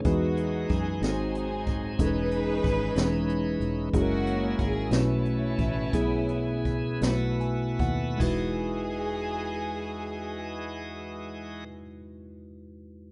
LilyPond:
<<
  \new Staff \with { instrumentName = "String section" } { \time 6/8 \key e \major \tempo 4. = 58 << { fis'4 gis'8 gis'4. | b'2~ b'8 r8 | fis'4 gis'8 e'4.~ | e'2 r4 |
gis'2.~ | gis'2. | } \\ { <b dis'>4. <bis dis'>4. | <dis' gis'>2~ <dis' gis'>8 r8 | <ais cis'>4. <a cis'>4.~ | <a cis'>2 r4 |
r2. | r2. | } >> }
  \new Staff \with { instrumentName = "Tine electric piano" } { \time 6/8 \key e \major << { r2. | r2. | r2. | r2 gis''8 fis''8 |
r2. | r2. | } \\ { <gis dis' fis' gis' b'>4 r8 <gis bis dis' fis' a' bis'>4 r8 | <gis cis' dis' gis' a' b'>4 r8 <e gis cis' dis' b'>4 r8 | <gis cis' e' fis' gis' ais'>4 r8 <a cis' e' fis' b'>4 r8 | <b e' gis'>4 r8 <a b dis' e' fis' b'>4 r8 |
<gis dis' e' fis' b'>2.~ | <gis dis' e' fis' b'>2. | } >> }
  \new Staff \with { instrumentName = "Tine electric piano" } { \clef bass \time 6/8 \key e \major e4. gis,4. | e4. r4. | r4. b,4. | b,4. b,4. |
e,2.~ | e,2. | }
  \new Staff \with { instrumentName = "Tonewheel organ" } { \time 6/8 \key e \major <e gis dis' fis'>4. <fis bis dis' fis' gis'>4. | <e cis' dis' b'>2. | <fis ais e' gis'>4. <e b cis' gis' a'>4. | <e b gis'>4. <a b e' fis'>4. |
<e gis fis' dis''>2.~ | <e gis fis' dis''>2. | }
  \new Staff \with { instrumentName = "Fingered electric bass" } { \clef bass \time 6/8 \key e \major e,4 fis,8 gis,,4 fis,,8 | e,,4 gis,,8 e,,4 e,,8 | fis,,4 gis,,8 b,,4 a,,8 | b,,4 cis,8 b,,4 dis,8 |
e,,2.~ | e,,2. | }
  \new DrumStaff \with { instrumentName = "Drums" } \drummode { \time 6/8 <hh bd>8 hh8 <hh bd>8 <hh sn>8 hh8 <hh bd>8 | <hh bd>8 hh8 <hh bd>8 <hh sn>8 hh8 hh8 | <hh bd>8 hh8 <hh bd>8 <hh sn>8 hh8 <hh bd>8 | <hh bd>8 hh8 <hh bd>8 <hh sn>8 hh8 <hh bd>8 |
<cymc bd>4. r4. | r4. r4. | }
>>